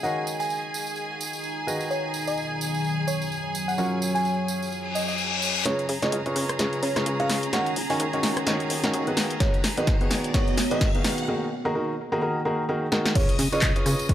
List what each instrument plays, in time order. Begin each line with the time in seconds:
Already playing: ambient pad C#4 G#4 D#5, violin section G#4 G#5
0.03 upright piano D#3 D#4 F#4 A#4 C#5 D#5, ambient pad D#4, fm electric piano F#5, tambourine
0.27 tambourine
0.40 fm electric piano G#5, tambourine
0.50 tambourine
0.58 ambient pad A#5
0.74 ambient pad F5, tambourine
0.87 tambourine
0.96 tambourine
1.21 tambourine
1.33 tambourine
1.44 tambourine
1.67 upright piano D#3 D#4 F#4 G#4 B4 D#5, ambient pad D#3, tambourine
1.75 ambient pad B3
1.80 tambourine
1.91 ambient pad F#3, fm electric piano C#5, tambourine
2.14 tambourine
2.27 fm electric piano D#5, tambourine
2.37 tambourine
2.61 ambient pad C#5, tambourine
2.74 tambourine
2.84 tambourine
3.08 fm electric piano C#5, tambourine
3.22 tambourine
3.32 tambourine
3.55 tambourine
3.68 fm electric piano F#5, tambourine
3.78 upright piano F#3 C#4 F4 F#4 A#4 C#5, fm electric piano F#5, tambourine
4.02 tambourine
4.15 fm electric piano G#5, tambourine
4.25 tambourine
4.48 tambourine
4.62 ambient pad G#5, tambourine
4.72 tambourine, reverse cymbal
4.95 fm electric piano D#5, tambourine
5.08 fm electric piano D#5, tambourine
5.18 tambourine
5.42 tambourine
5.56 tambourine
5.65 analog synth bass C#2, upright piano C#3 C#4 F4 G#4 B4 C#5, ambient pad C#4, violin section G#4 A#5, fm electric piano C#5, snare, closed hi-hat, riser
5.79 closed hi-hat
5.89 analog synth bass C#3, ambient pad G#4, open hi-hat
6.02 upright piano C#3 C#4 F4 G#4 B4 C#5, fm electric piano D#5, snare, closed hi-hat
6.12 analog synth bass C#2, closed hi-hat
6.26 upright piano C#3 C#4 F4 G#4 B4 C#5, closed hi-hat
6.36 analog synth bass C#3, open hi-hat
6.49 ambient pad D#5, cross-stick, closed hi-hat
6.59 analog synth bass C#2, upright piano C#3 C#4 F4 G#4 B4 C#5, snare, closed hi-hat
6.73 closed hi-hat
6.83 analog synth bass C#3, fm electric piano C#5, open hi-hat
6.96 upright piano C#3 C#4 F4 G#4 B4 C#5, cross-stick, snare, closed hi-hat
7.06 analog synth bass C#2, closed hi-hat
7.20 upright piano C#3 C#4 F4 G#4 B4 C#5, fm electric piano F5, closed hi-hat
7.29 analog synth bass C#3, snare, open hi-hat
7.43 closed hi-hat
7.53 analog synth bass D#2, upright piano D#3 C#4 D#4 F#4 A#4 C#5, ambient pad D#4, fm electric piano F#5, snare, closed hi-hat
7.66 closed hi-hat
7.76 analog synth bass D#1, open hi-hat
7.90 upright piano D#3 C#4 D#4 F#4 A#4 C#5, fm electric piano G#5, open hi-hat
7.97 analog synth bass D#2, ambient pad F5, closed hi-hat
8.13 upright piano D#3 C#4 D#4 F#4 A#4 C#5, closed hi-hat
8.23 analog synth bass D#1, ambient pad A#4, snare, open hi-hat
8.37 cross-stick, closed hi-hat
8.47 analog synth bass D#2, upright piano D#3 C#4 D#4 F#4 A#4 C#5, snare, closed hi-hat
8.60 closed hi-hat
8.70 analog synth bass D#1, open hi-hat
8.84 upright piano D#3 C#4 D#4 F#4 A#4 C#5, snare, closed hi-hat
8.94 analog synth bass D#2, closed hi-hat
9.07 upright piano D#3 B3 D#4 F#4 G#4 B4, closed hi-hat
9.17 analog synth bass D#1, ambient pad B3, snare, open hi-hat
9.30 closed hi-hat
9.40 analog synth bass D#2, upright piano D#3 B3 D#4 F#4 G#4 B4, fm electric piano C#5, kick, snare, closed hi-hat
9.45 ambient pad F#4
9.54 closed hi-hat
9.62 analog synth bass D#1, ambient pad C#5, snare, open hi-hat
9.77 upright piano D#3 B3 D#4 F#4 G#4 B4, fm electric piano D#5, closed hi-hat
9.87 analog synth bass D#2, kick, snare, closed hi-hat
10.01 upright piano D#3 B3 D#4 F#4 G#4 B4, closed hi-hat
10.11 analog synth bass D#1, snare, open hi-hat
10.24 closed hi-hat
10.34 analog synth bass D#2, upright piano D#3 B3 D#4 F#4 G#4 B4, fm electric piano C#5, kick, snare, closed hi-hat
10.48 closed hi-hat
10.57 snare, open hi-hat
10.71 upright piano D#3 B3 D#4 F#4 G#4 B4, fm electric piano D#5, closed hi-hat
10.81 analog synth bass D#2, kick, snare, closed hi-hat
10.95 upright piano D#3 B3 D#4 F#4 G#4 B4, closed hi-hat
11.04 analog synth bass D#1, snare, open hi-hat
11.18 closed hi-hat
11.28 upright piano D#3 A#3 D#4 F#4 G#4 A#4
11.65 upright piano D#3 A#3 D#4 F#4 G#4 A#4
11.75 upright piano D#3 A#3 D#4 F#4 G#4 A#4
12.12 upright piano D#3 A#3 D#4 F#4 G#4 A#4
12.22 upright piano D#3 A#3 D#4 F#4 G#4 A#4
12.45 upright piano D#3 A#3 D#4 F#4 G#4 A#4
12.69 upright piano D#3 A#3 D#4 F#4 G#4 A#4
12.92 upright piano D#3 A#3 D#4 F#4 G#4 A#4, snare
13.06 snare
13.15 analog synth bass C#2, upright piano C#3 C#4 F4 G#4 B4 C#5, ambient pad C#4, fm electric piano C#5, violin section D#5 D#6, kick, closed hi-hat, crash, tambourine, impact
13.29 closed hi-hat
13.39 analog synth bass C#3, open hi-hat, tambourine
13.52 upright piano C#3 C#4 F4 G#4 B4 C#5, fm electric piano D#5, closed hi-hat, tambourine
13.62 analog synth bass C#2, kick, clap, closed hi-hat, tambourine
13.76 upright piano C#3 C#4 F4 G#4 B4 C#5, closed hi-hat
13.86 analog synth bass C#3, cross-stick, open hi-hat, tambourine
13.99 closed hi-hat, tambourine
14.09 analog synth bass C#2, upright piano C#3 C#4 F4 G#4 B4 C#5, kick, closed hi-hat, tambourine